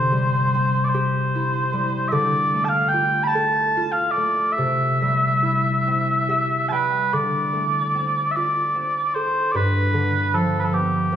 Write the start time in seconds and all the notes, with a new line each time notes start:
Already playing: C3 A3 D4 G4 C5
0.12 G3
0.54 C4
0.85 D5
0.89 C5
0.94 G4
1.35 E4
1.73 G3
2.08 D3 D5 E5
2.54 A3
2.65 A5
2.69 F5
2.88 G5
2.94 F4
3.23 A5 B5
3.35 A4
3.77 F4
3.92 F5
4.11 D5
4.17 A3
4.52 E5
4.58 C3
5.02 G3
5.42 E4
5.87 C4
6.28 G4 E5
6.69 G3 B4 G5 A5
7.13 D3 D5
7.53 A3
7.95 C4
8.31 E5
8.35 F4 D5
8.75 C4
9.15 A4 C5
9.52 G2 D5
9.56 B4
9.93 D3
10.34 F3 A4
10.60 B4
10.64 A4
10.73 B3 G4
11.12 F3